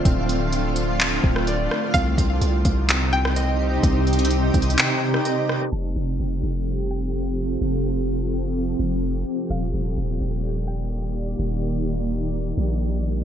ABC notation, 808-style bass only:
X:1
M:4/4
L:1/8
Q:1/4=127
K:Fmix
V:1 name="808-style bass" clef=bass
D,,,4- D,,, D,,,2 z | C,, C,, C,, C,,4- C,, | C,,3 C,, z4 | F,,, F,,, F,,, F,,,4- F,,, |
F,,,4- F,,, F,,,2 z | E,,, E,,, E,,, E,,,4- E,,, | E,,,4- E,,, B,,,3 |]